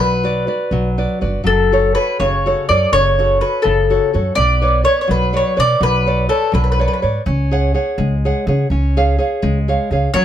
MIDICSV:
0, 0, Header, 1, 4, 480
1, 0, Start_track
1, 0, Key_signature, 3, "minor"
1, 0, Tempo, 490998
1, 1430, Time_signature, 6, 3, 24, 8
1, 2863, Tempo, 480769
1, 10172, End_track
2, 0, Start_track
2, 0, Title_t, "Mandolin"
2, 0, Program_c, 0, 25
2, 0, Note_on_c, 0, 71, 100
2, 926, Note_off_c, 0, 71, 0
2, 1433, Note_on_c, 0, 69, 80
2, 1890, Note_off_c, 0, 69, 0
2, 1904, Note_on_c, 0, 71, 81
2, 2145, Note_off_c, 0, 71, 0
2, 2149, Note_on_c, 0, 73, 73
2, 2603, Note_off_c, 0, 73, 0
2, 2627, Note_on_c, 0, 74, 92
2, 2842, Note_off_c, 0, 74, 0
2, 2862, Note_on_c, 0, 73, 117
2, 3341, Note_off_c, 0, 73, 0
2, 3345, Note_on_c, 0, 71, 66
2, 3555, Note_on_c, 0, 69, 71
2, 3585, Note_off_c, 0, 71, 0
2, 4076, Note_off_c, 0, 69, 0
2, 4286, Note_on_c, 0, 74, 110
2, 4748, Note_off_c, 0, 74, 0
2, 4778, Note_on_c, 0, 73, 89
2, 4931, Note_off_c, 0, 73, 0
2, 4943, Note_on_c, 0, 73, 63
2, 5010, Note_off_c, 0, 73, 0
2, 5039, Note_on_c, 0, 71, 70
2, 5274, Note_off_c, 0, 71, 0
2, 5295, Note_on_c, 0, 73, 66
2, 5523, Note_off_c, 0, 73, 0
2, 5528, Note_on_c, 0, 74, 106
2, 5753, Note_off_c, 0, 74, 0
2, 5761, Note_on_c, 0, 71, 91
2, 6218, Note_off_c, 0, 71, 0
2, 6222, Note_on_c, 0, 69, 71
2, 6464, Note_off_c, 0, 69, 0
2, 6474, Note_on_c, 0, 71, 66
2, 6544, Note_off_c, 0, 71, 0
2, 6566, Note_on_c, 0, 71, 43
2, 6632, Note_off_c, 0, 71, 0
2, 6645, Note_on_c, 0, 71, 55
2, 6712, Note_off_c, 0, 71, 0
2, 6741, Note_on_c, 0, 71, 41
2, 6794, Note_off_c, 0, 71, 0
2, 6805, Note_on_c, 0, 71, 49
2, 6850, Note_off_c, 0, 71, 0
2, 6862, Note_on_c, 0, 71, 41
2, 6924, Note_off_c, 0, 71, 0
2, 10059, Note_on_c, 0, 73, 114
2, 10172, Note_off_c, 0, 73, 0
2, 10172, End_track
3, 0, Start_track
3, 0, Title_t, "Nylon-string guitar"
3, 0, Program_c, 1, 24
3, 0, Note_on_c, 1, 54, 53
3, 0, Note_on_c, 1, 66, 38
3, 0, Note_on_c, 1, 71, 28
3, 0, Note_on_c, 1, 74, 38
3, 133, Note_off_c, 1, 66, 0
3, 136, Note_off_c, 1, 71, 0
3, 138, Note_off_c, 1, 74, 0
3, 230, Note_on_c, 1, 66, 51
3, 236, Note_on_c, 1, 71, 38
3, 242, Note_on_c, 1, 74, 58
3, 449, Note_off_c, 1, 66, 0
3, 451, Note_off_c, 1, 54, 0
3, 452, Note_off_c, 1, 71, 0
3, 457, Note_off_c, 1, 74, 0
3, 459, Note_on_c, 1, 66, 33
3, 465, Note_on_c, 1, 71, 36
3, 469, Note_on_c, 1, 74, 45
3, 706, Note_on_c, 1, 54, 56
3, 862, Note_off_c, 1, 66, 0
3, 864, Note_off_c, 1, 71, 0
3, 867, Note_off_c, 1, 74, 0
3, 954, Note_on_c, 1, 66, 40
3, 958, Note_on_c, 1, 71, 37
3, 962, Note_on_c, 1, 74, 44
3, 1173, Note_off_c, 1, 66, 0
3, 1177, Note_off_c, 1, 71, 0
3, 1178, Note_off_c, 1, 74, 0
3, 1184, Note_on_c, 1, 66, 35
3, 1186, Note_off_c, 1, 54, 0
3, 1188, Note_on_c, 1, 71, 29
3, 1191, Note_on_c, 1, 74, 35
3, 1375, Note_off_c, 1, 66, 0
3, 1378, Note_off_c, 1, 71, 0
3, 1378, Note_off_c, 1, 74, 0
3, 1405, Note_on_c, 1, 54, 53
3, 1684, Note_on_c, 1, 66, 46
3, 1689, Note_on_c, 1, 69, 47
3, 1695, Note_on_c, 1, 73, 56
3, 1895, Note_off_c, 1, 54, 0
3, 1896, Note_off_c, 1, 66, 0
3, 1897, Note_off_c, 1, 69, 0
3, 1901, Note_off_c, 1, 73, 0
3, 1907, Note_on_c, 1, 66, 39
3, 1910, Note_on_c, 1, 69, 33
3, 1913, Note_on_c, 1, 73, 42
3, 2145, Note_on_c, 1, 49, 62
3, 2305, Note_off_c, 1, 66, 0
3, 2305, Note_off_c, 1, 69, 0
3, 2308, Note_off_c, 1, 73, 0
3, 2403, Note_on_c, 1, 66, 51
3, 2409, Note_on_c, 1, 69, 46
3, 2415, Note_on_c, 1, 73, 49
3, 2621, Note_off_c, 1, 49, 0
3, 2627, Note_off_c, 1, 66, 0
3, 2631, Note_off_c, 1, 69, 0
3, 2635, Note_off_c, 1, 73, 0
3, 2638, Note_on_c, 1, 66, 38
3, 2644, Note_on_c, 1, 69, 33
3, 2647, Note_on_c, 1, 73, 43
3, 2858, Note_on_c, 1, 49, 52
3, 3028, Note_off_c, 1, 66, 0
3, 3031, Note_off_c, 1, 69, 0
3, 3034, Note_off_c, 1, 73, 0
3, 3121, Note_on_c, 1, 66, 57
3, 3128, Note_on_c, 1, 69, 44
3, 3131, Note_on_c, 1, 73, 58
3, 3331, Note_off_c, 1, 66, 0
3, 3332, Note_off_c, 1, 69, 0
3, 3337, Note_off_c, 1, 73, 0
3, 3338, Note_off_c, 1, 49, 0
3, 3342, Note_on_c, 1, 66, 36
3, 3347, Note_on_c, 1, 69, 41
3, 3349, Note_on_c, 1, 73, 43
3, 3574, Note_on_c, 1, 49, 64
3, 3739, Note_off_c, 1, 66, 0
3, 3740, Note_off_c, 1, 69, 0
3, 3743, Note_off_c, 1, 73, 0
3, 3836, Note_on_c, 1, 66, 47
3, 3837, Note_on_c, 1, 69, 43
3, 3842, Note_on_c, 1, 73, 49
3, 4053, Note_off_c, 1, 49, 0
3, 4055, Note_off_c, 1, 66, 0
3, 4061, Note_off_c, 1, 69, 0
3, 4061, Note_off_c, 1, 73, 0
3, 4067, Note_on_c, 1, 66, 38
3, 4073, Note_on_c, 1, 69, 41
3, 4075, Note_on_c, 1, 73, 40
3, 4251, Note_off_c, 1, 66, 0
3, 4255, Note_off_c, 1, 69, 0
3, 4255, Note_off_c, 1, 73, 0
3, 4286, Note_on_c, 1, 59, 48
3, 4549, Note_on_c, 1, 71, 53
3, 4555, Note_on_c, 1, 73, 45
3, 4556, Note_on_c, 1, 74, 54
3, 4754, Note_off_c, 1, 71, 0
3, 4763, Note_off_c, 1, 73, 0
3, 4764, Note_off_c, 1, 74, 0
3, 4766, Note_on_c, 1, 71, 38
3, 4768, Note_off_c, 1, 59, 0
3, 4775, Note_on_c, 1, 73, 45
3, 4778, Note_on_c, 1, 74, 46
3, 5006, Note_on_c, 1, 54, 51
3, 5169, Note_off_c, 1, 71, 0
3, 5174, Note_off_c, 1, 73, 0
3, 5175, Note_off_c, 1, 74, 0
3, 5259, Note_on_c, 1, 71, 45
3, 5264, Note_on_c, 1, 73, 47
3, 5270, Note_on_c, 1, 74, 56
3, 5483, Note_off_c, 1, 71, 0
3, 5488, Note_off_c, 1, 54, 0
3, 5488, Note_off_c, 1, 73, 0
3, 5488, Note_off_c, 1, 74, 0
3, 5495, Note_on_c, 1, 71, 33
3, 5499, Note_on_c, 1, 73, 36
3, 5502, Note_on_c, 1, 74, 39
3, 5736, Note_on_c, 1, 54, 54
3, 5891, Note_off_c, 1, 71, 0
3, 5895, Note_off_c, 1, 73, 0
3, 5895, Note_off_c, 1, 74, 0
3, 5993, Note_on_c, 1, 71, 44
3, 5997, Note_on_c, 1, 73, 39
3, 6005, Note_on_c, 1, 74, 58
3, 6203, Note_off_c, 1, 71, 0
3, 6212, Note_off_c, 1, 74, 0
3, 6213, Note_off_c, 1, 54, 0
3, 6213, Note_off_c, 1, 73, 0
3, 6215, Note_on_c, 1, 71, 43
3, 6223, Note_on_c, 1, 74, 43
3, 6227, Note_on_c, 1, 73, 35
3, 6447, Note_on_c, 1, 54, 53
3, 6620, Note_off_c, 1, 71, 0
3, 6625, Note_off_c, 1, 74, 0
3, 6626, Note_off_c, 1, 73, 0
3, 6717, Note_on_c, 1, 71, 46
3, 6721, Note_on_c, 1, 73, 38
3, 6726, Note_on_c, 1, 74, 38
3, 6936, Note_off_c, 1, 73, 0
3, 6937, Note_off_c, 1, 71, 0
3, 6939, Note_off_c, 1, 54, 0
3, 6944, Note_off_c, 1, 74, 0
3, 6949, Note_on_c, 1, 71, 32
3, 6951, Note_on_c, 1, 73, 32
3, 6956, Note_on_c, 1, 74, 35
3, 7139, Note_off_c, 1, 73, 0
3, 7140, Note_off_c, 1, 71, 0
3, 7144, Note_off_c, 1, 74, 0
3, 7187, Note_on_c, 1, 61, 47
3, 7441, Note_on_c, 1, 68, 51
3, 7450, Note_on_c, 1, 73, 44
3, 7452, Note_on_c, 1, 78, 57
3, 7657, Note_off_c, 1, 68, 0
3, 7664, Note_off_c, 1, 73, 0
3, 7664, Note_off_c, 1, 78, 0
3, 7669, Note_on_c, 1, 68, 38
3, 7670, Note_off_c, 1, 61, 0
3, 7674, Note_on_c, 1, 73, 39
3, 7678, Note_on_c, 1, 78, 38
3, 7908, Note_on_c, 1, 56, 58
3, 8066, Note_off_c, 1, 68, 0
3, 8070, Note_off_c, 1, 73, 0
3, 8070, Note_off_c, 1, 78, 0
3, 8176, Note_on_c, 1, 68, 43
3, 8178, Note_on_c, 1, 73, 47
3, 8187, Note_on_c, 1, 78, 49
3, 8384, Note_off_c, 1, 56, 0
3, 8396, Note_off_c, 1, 68, 0
3, 8396, Note_off_c, 1, 73, 0
3, 8398, Note_off_c, 1, 78, 0
3, 8406, Note_on_c, 1, 68, 43
3, 8410, Note_on_c, 1, 73, 35
3, 8415, Note_on_c, 1, 78, 36
3, 8589, Note_off_c, 1, 68, 0
3, 8589, Note_off_c, 1, 73, 0
3, 8590, Note_off_c, 1, 78, 0
3, 8639, Note_on_c, 1, 61, 55
3, 8893, Note_on_c, 1, 68, 53
3, 8894, Note_on_c, 1, 73, 45
3, 8899, Note_on_c, 1, 77, 61
3, 9096, Note_off_c, 1, 68, 0
3, 9106, Note_off_c, 1, 73, 0
3, 9107, Note_off_c, 1, 77, 0
3, 9108, Note_on_c, 1, 68, 44
3, 9110, Note_off_c, 1, 61, 0
3, 9117, Note_on_c, 1, 73, 38
3, 9122, Note_on_c, 1, 77, 44
3, 9347, Note_on_c, 1, 56, 61
3, 9503, Note_off_c, 1, 68, 0
3, 9508, Note_off_c, 1, 73, 0
3, 9509, Note_off_c, 1, 77, 0
3, 9605, Note_on_c, 1, 68, 49
3, 9610, Note_on_c, 1, 73, 38
3, 9616, Note_on_c, 1, 77, 49
3, 9820, Note_off_c, 1, 56, 0
3, 9829, Note_off_c, 1, 68, 0
3, 9832, Note_off_c, 1, 73, 0
3, 9839, Note_off_c, 1, 77, 0
3, 9840, Note_on_c, 1, 68, 37
3, 9846, Note_on_c, 1, 73, 28
3, 9851, Note_on_c, 1, 77, 36
3, 10021, Note_off_c, 1, 68, 0
3, 10023, Note_off_c, 1, 73, 0
3, 10027, Note_off_c, 1, 77, 0
3, 10070, Note_on_c, 1, 54, 63
3, 10172, Note_off_c, 1, 54, 0
3, 10172, End_track
4, 0, Start_track
4, 0, Title_t, "Upright bass"
4, 0, Program_c, 2, 32
4, 0, Note_on_c, 2, 35, 70
4, 447, Note_off_c, 2, 35, 0
4, 695, Note_on_c, 2, 35, 81
4, 1020, Note_off_c, 2, 35, 0
4, 1192, Note_on_c, 2, 31, 77
4, 1345, Note_off_c, 2, 31, 0
4, 1419, Note_on_c, 2, 30, 73
4, 1892, Note_off_c, 2, 30, 0
4, 2147, Note_on_c, 2, 30, 86
4, 2465, Note_off_c, 2, 30, 0
4, 2633, Note_on_c, 2, 42, 77
4, 2782, Note_off_c, 2, 42, 0
4, 2859, Note_on_c, 2, 30, 84
4, 3329, Note_off_c, 2, 30, 0
4, 3588, Note_on_c, 2, 30, 76
4, 3904, Note_off_c, 2, 30, 0
4, 4079, Note_on_c, 2, 42, 83
4, 4225, Note_off_c, 2, 42, 0
4, 4306, Note_on_c, 2, 35, 87
4, 4772, Note_off_c, 2, 35, 0
4, 5023, Note_on_c, 2, 35, 80
4, 5341, Note_off_c, 2, 35, 0
4, 5511, Note_on_c, 2, 47, 91
4, 5659, Note_off_c, 2, 47, 0
4, 5735, Note_on_c, 2, 35, 84
4, 6206, Note_off_c, 2, 35, 0
4, 6464, Note_on_c, 2, 35, 96
4, 6788, Note_off_c, 2, 35, 0
4, 6962, Note_on_c, 2, 44, 76
4, 7113, Note_off_c, 2, 44, 0
4, 7189, Note_on_c, 2, 37, 96
4, 7660, Note_off_c, 2, 37, 0
4, 7905, Note_on_c, 2, 37, 91
4, 8225, Note_off_c, 2, 37, 0
4, 8394, Note_on_c, 2, 49, 95
4, 8545, Note_off_c, 2, 49, 0
4, 8625, Note_on_c, 2, 37, 86
4, 9093, Note_off_c, 2, 37, 0
4, 9353, Note_on_c, 2, 37, 92
4, 9668, Note_off_c, 2, 37, 0
4, 9831, Note_on_c, 2, 37, 81
4, 9980, Note_off_c, 2, 37, 0
4, 10063, Note_on_c, 2, 42, 85
4, 10172, Note_off_c, 2, 42, 0
4, 10172, End_track
0, 0, End_of_file